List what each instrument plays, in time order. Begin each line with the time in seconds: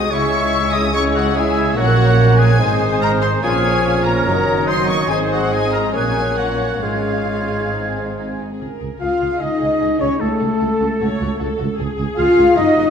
Already playing: viola section G#4, oboe D#5, clarinet D#5, violin section D#6
0.02 violin section D#4 G#4
0.11 double bass section C#2, cello section C#3, bassoon G#3, french horn section G#3 E4, violin section E4 C#6, oboe C#5, clarinet C#5, viola section E5, flute section E6
0.22 violin section C#4 G#4
0.32 violin section E4
0.43 violin section C#4 G#4
0.52 violin section E4
0.63 violin section C#4 G#4
0.72 violin section E4 D#6, oboe D#5
0.84 violin section C#4 G#4
0.93 bassoon G#3, french horn section G#3 E4, violin section E4 C#6, clarinet C#5, oboe C#5, viola section C#5, flute section E6
1.05 violin section C#4 G#4
1.15 violin section E4 F#5, oboe F#4
1.26 violin section C#4 G#4
1.35 bassoon G#3, french horn section G#3 E4, violin section E4 G#5, oboe G#4, clarinet C#5, viola section E5, flute section E6
1.47 violin section C#4 G#4
1.57 violin section E4
1.66 violin section C#4 G#4
1.76 double bass section A#1, cello section A#2, french horn section F#3 C#4, violin section A#3 F#4 F#5, bassoon A#3, oboe F#4, viola section C#5, clarinet C#5, flute section F#6
1.86 violin section C#4 A#4
1.96 violin section A#3 F#4
2.08 violin section C#4 A#4
2.18 violin section A#3 F#4, viola section A#4
2.29 violin section C#4 A#4
2.38 violin section A#3 F#4 G#5, oboe G#4
2.49 violin section C#4 A#4
2.59 double bass section G#1, cello section G#2, french horn section D#3 C4, bassoon G#3, violin section D#4, viola section C5, clarinet C5, flute section D#6
2.70 violin section C4 G#4
2.81 violin section D#4
2.91 violin section C4 G#4
3.02 violin section D#4 A#5, oboe A#4
3.11 violin section C4 G#4
3.22 violin section D#4 C6, oboe C5
3.33 violin section C4 G#4
3.42 double bass section A#1, cello section A#2, french horn section F3 C#4, bassoon F3, violin section A#3 F4 G#5, oboe G#4, clarinet C#5, viola section C#5, flute section F6
3.53 violin section C#4 G#4
3.63 violin section A#3 F4
3.74 violin section C#4 G#4
3.84 violin section A#3 F4
3.95 violin section C#4 G#4
4.05 violin section A#3 F4 A#5, oboe A#4
4.15 violin section C#4 G#4
4.25 double bass section F#1, cello section F#2, french horn section D#3, bassoon F#3, violin section A#3 D#4, viola section A#4, flute section D#6
4.36 violin section C#4 F#4
4.47 violin section A#3 D#4
4.58 violin section C#4 F#4
4.67 violin section A#3 D#4 C6, oboe C5, viola section D#5
4.78 violin section C#4 F#4
4.89 violin section A#3 D#4 C#6, oboe C#5
5.00 violin section C#4 F#4
5.09 double bass section G#1, cello section G#2, french horn section D#3 C4, bassoon G#3, violin section D#4 G#5, oboe G#4, viola section C5, clarinet C5
5.22 violin section C4 G#4
5.31 violin section D#4 F#5, oboe F#4
5.42 violin section C4 G#4
5.51 french horn section F3, violin section D#4 G#5, oboe G#4, viola section D#5
5.65 violin section C4 G#4
5.73 violin section D#4 A#5, oboe A#4
5.85 violin section C4 G#4
5.93 double bass section A#1, cello section A#2, french horn section F#3 C#4, bassoon A#3, violin section A#3 C#4 G#5, oboe G#4, clarinet C#5, viola section C#5, flute section F#6
6.06 violin section A#3 C#4
6.17 violin section A#3 C#4
6.28 violin section A#3 C#4
6.36 french horn section F#3 C#4, violin section A#3 C#4 F#5, oboe F#4
6.50 violin section A#3 C#4
6.61 violin section A#3 C#4
6.71 violin section A#3 C#4
6.81 double bass section G#1, cello section G#2, french horn section G#3 C#4, bassoon G#3, violin section C#4 F4 F5, oboe F4, viola section G#4, flute section G#6
6.95 violin section C#4 F4
7.06 violin section C#4 F4
7.17 violin section C#4 F4
7.28 violin section C#4 F4
7.40 violin section C#4 F4
7.50 violin section C#4 F4
7.63 violin section C#4 F4
7.73 french horn section G#3 C4, violin section D#4, clarinet C5
7.85 violin section C4 G#4
7.96 violin section D#4
8.07 violin section C4 G#4
8.18 violin section D#4
8.28 violin section C4 G#4
8.40 violin section D#4
8.51 violin section C4 G#4
8.60 double bass section C#2, tuba C#2, violin section G#4, viola section A#4
8.80 tuba C#2, double bass section C#2, violin section G#4
9.00 tuba C#2, double bass section C#2, cello section F4, french horn section F4, violin section G#4 F5, viola section G#4, flute section F5, oboe F5, trumpet F5, clarinet F5
9.20 double bass section C#2, tuba C#2, violin section G#4
9.40 tuba C#2, double bass section C#2, french horn section D#4, cello section D#4, violin section G#4 D#5, trumpet D#5, flute section D#5, oboe D#5, clarinet D#5
9.61 tuba C#2, double bass section C#2, violin section G#4
9.80 double bass section C#2, tuba C#2, violin section G#4
10.00 double bass section C#2, tuba C#2, cello section C#4, french horn section C#4, violin section G#4 C#5, trumpet C#5, flute section C#5, oboe C#5, clarinet C#5
10.20 double bass section C#2, tuba C#2, cello section A3, french horn section A3, violin section F#4 A4, oboe A4, trumpet A4, clarinet A4
10.39 double bass section C#2, tuba C#2, violin section F#4
10.60 double bass section C#2, tuba C#2, violin section F#4, viola section A4
10.80 double bass section C#2, tuba C#2, violin section F#4
11.00 double bass section C#2, tuba C#2, violin section F#4, viola section C#5
11.20 double bass section C#2, tuba C#2, violin section F#4
11.39 double bass section C#2, tuba C#2, violin section F#4, viola section A4
11.59 double bass section C#2, tuba C#2, violin section F#4
11.78 double bass section C#2, tuba C#2, violin section G#4, viola section G#4
11.97 double bass section C#2, tuba C#2, violin section G#4
12.16 double bass section C#2, tuba C#2, french horn section F4, cello section F4, violin section G#4 F5, oboe F5, trumpet F5, clarinet F5
12.36 double bass section C#2, tuba C#2, violin section G#4
12.55 double bass section F#1, tuba F#1, french horn section D#4, cello section D#4, viola section F#4, violin section A#4 D#5, oboe D#5, clarinet D#5, trumpet D#5, flute section D#5
12.76 double bass section F#1, tuba F#1, violin section A#4